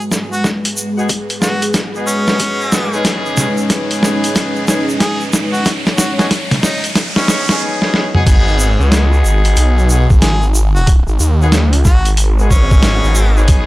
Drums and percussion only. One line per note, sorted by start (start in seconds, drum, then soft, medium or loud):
0.01 shaker soft
0.12 snare medium
0.12 shaker medium
0.33 shaker soft
0.44 kick medium
0.44 snare medium
0.44 shaker medium
0.65 closed hi-hat medium
0.65 shaker soft
0.77 shaker medium
0.98 shaker soft
1.09 kick medium
1.09 closed hi-hat medium
1.09 shaker soft
1.30 closed hi-hat medium
1.30 shaker soft
1.42 snare medium
1.42 shaker loud
1.62 closed hi-hat medium
1.62 shaker soft
1.74 kick loud
1.74 snare medium
1.74 closed hi-hat medium
1.74 shaker soft
1.95 shaker soft
2.07 shaker medium
2.28 snare medium
2.28 shaker soft
2.39 kick medium
2.39 closed hi-hat medium
2.39 shaker medium
2.61 shaker soft
2.72 snare medium
2.72 shaker medium
2.93 shaker soft
3.05 kick loud
3.05 snare medium
3.05 closed hi-hat medium
3.05 shaker medium
3.26 shaker soft
3.37 snare medium
3.37 shaker medium
3.57 shaker soft
3.70 kick loud
3.70 snare medium
3.70 closed hi-hat medium
3.70 shaker soft
3.91 closed hi-hat medium
3.91 shaker soft
4.03 snare medium
4.03 shaker medium
4.24 closed hi-hat medium
4.24 shaker soft
4.35 kick loud
4.35 snare medium
4.35 closed hi-hat medium
4.35 shaker medium
4.56 shaker soft
4.68 snare medium
4.68 shaker loud
4.89 shaker soft
5.00 kick loud
5.00 snare medium
5.00 closed hi-hat medium
5.00 shaker medium
5.21 shaker soft
5.33 snare medium
5.33 shaker medium
5.54 shaker soft
5.65 kick loud
5.65 snare medium
5.65 closed hi-hat medium
5.65 shaker medium
5.86 snare medium
5.86 closed hi-hat soft
5.86 shaker soft
5.98 snare loud
5.98 shaker loud
6.19 snare medium
6.19 closed hi-hat soft
6.19 shaker soft
6.31 kick loud
6.31 snare loud
6.31 closed hi-hat medium
6.31 shaker medium
6.51 snare medium
6.51 closed hi-hat medium
6.51 shaker soft
6.63 snare loud
6.63 shaker loud
6.84 closed hi-hat medium
6.84 shaker soft
6.96 kick loud
6.96 snare loud
6.96 closed hi-hat medium
6.96 shaker medium
7.16 snare loud
7.16 shaker soft
7.28 snare loud
7.28 shaker medium
7.49 snare loud
7.49 shaker soft
7.82 snare medium
7.94 snare medium
8.15 mid tom medium
8.27 kick loud
8.27 closed hi-hat medium
8.27 crash loud
8.27 shaker medium
8.48 shaker soft
8.60 shaker medium
8.81 shaker soft
8.92 snare loud
8.92 closed hi-hat medium
8.92 shaker medium
9.13 shaker soft
9.25 shaker loud
9.45 closed hi-hat medium
9.45 shaker soft
9.57 closed hi-hat medium
9.57 shaker medium
9.79 shaker soft
9.90 shaker medium
10.10 kick loud
10.10 shaker soft
10.22 snare loud
10.22 closed hi-hat medium
10.22 shaker medium
10.42 shaker soft
10.55 shaker medium
10.76 shaker soft
10.87 kick loud
10.87 closed hi-hat medium
10.87 shaker medium
11.08 shaker soft
11.20 shaker medium
11.42 shaker soft
11.52 snare loud
11.52 closed hi-hat medium
11.52 shaker medium
11.73 closed hi-hat medium
11.73 shaker soft
11.85 kick loud
11.85 snare soft
11.85 shaker medium
12.05 closed hi-hat medium
12.05 shaker soft
12.17 closed hi-hat medium
12.17 shaker medium
12.39 shaker soft
12.51 kick medium
12.51 shaker medium
12.71 kick loud
12.71 shaker soft
12.83 snare loud
12.83 closed hi-hat medium
12.83 shaker medium
13.04 shaker soft
13.15 shaker loud
13.37 shaker soft
13.48 kick loud
13.48 closed hi-hat medium
13.48 shaker medium